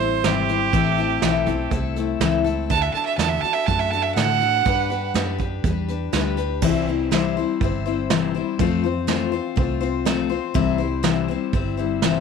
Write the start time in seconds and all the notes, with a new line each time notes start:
Already playing: A1 C5
0.00 G3 C4 E4 C5
0.24 G#1 C3 E3 G3 C4 E4 G4 C5, snare, closed hi-hat
0.49 G3 C4 E4 C5, closed hi-hat
0.73 A1 A2 E3 A3 C4 E4 A4, kick, closed hi-hat
0.98 A3 C4 E4 A4, closed hi-hat
1.22 B1 A2 E3 A3 C4 E4 A4, snare, closed hi-hat
1.46 A3 C4 E4 A4, kick, closed hi-hat
1.71 C2 A3 C4 E4 A4, kick, closed hi-hat
1.96 A3 C4 E4 A4, closed hi-hat
2.20 C#2 A2 E3 A3 C4 E4 A4, snare, closed hi-hat
2.44 A3 C4 E4 A4, closed hi-hat
2.70 D2 D3 A3 D4 F#4 A4 A5, kick, closed hi-hat
2.82 E5
2.94 D4 F#4 A4 A5, closed hi-hat
3.05 E5
3.18 E2 D3 A3 D4 F#4 A4 A5, snare, closed hi-hat
3.29 E5
3.41 F#4 A4 A5, muted fingered electric bass stroke, closed hi-hat
3.46 D4
3.53 E5
3.66 F#2 A3 D4 F#4 A4 A5, kick, closed hi-hat
3.80 E5
3.91 D4 F#4 A4 A5, closed hi-hat
4.03 E5
4.15 A2 D3 A3 D4 F#4 A4 F#5, snare, closed hi-hat
4.40 D4 F#4 A4, closed hi-hat
4.65 G2 G3 D4 G4 B4, kick, closed hi-hat
4.90 D4 G4 B4, closed hi-hat
5.14 F#2 G3 D4 G4 B4, snare, closed hi-hat
5.38 D4 G4 B4, kick, closed hi-hat
5.64 E2 G3 D4 G4 B4, kick, closed hi-hat
5.88 D4 G4 B4, closed hi-hat
6.13 D2 G3 D4 G4 B4, snare, closed hi-hat
6.37 D4 G4 B4, closed hi-hat
6.62 C2 C3 E3 G3 C4 E4 C5, kick, crash
6.87 G3 C4 E4 C5
7.11 C3 E3 G3 C4 E4 C5, snare
7.37 G3 C4 E4 C5
7.61 G1 G3 C4 E4 C5, kick, open hi-hat
7.86 G3 C4 E4 C5
8.10 C3 E3 G3 C4 E4 C5, snare, open hi-hat
8.35 G3 C4 E4 C5
8.59 F2 F3 A3 C4 F4 C5, kick, open hi-hat
8.84 C4 F4 C5
9.07 F3 A3 C4 F4 C5, snare
9.32 C4 F4 C5
9.56 C2 A3 C4 F4 C5, kick, open hi-hat
9.80 C4 F4 C5
10.05 F3 A3 C4 F4 C5, snare
10.29 C4 F4 C5
10.54 C2 C3 E3 G3 C4 E4 C5, kick, open hi-hat
10.78 G3 C4 E4 C5
11.03 C3 E3 G3 C4 E4 C5, snare
11.28 G3 C4 E4 C5
11.53 G1 G3 C4 E4 C5, kick, open hi-hat
11.77 G3 C4 E4 C5
12.02 C3 E3 G3 C4 E4 C5, snare, open hi-hat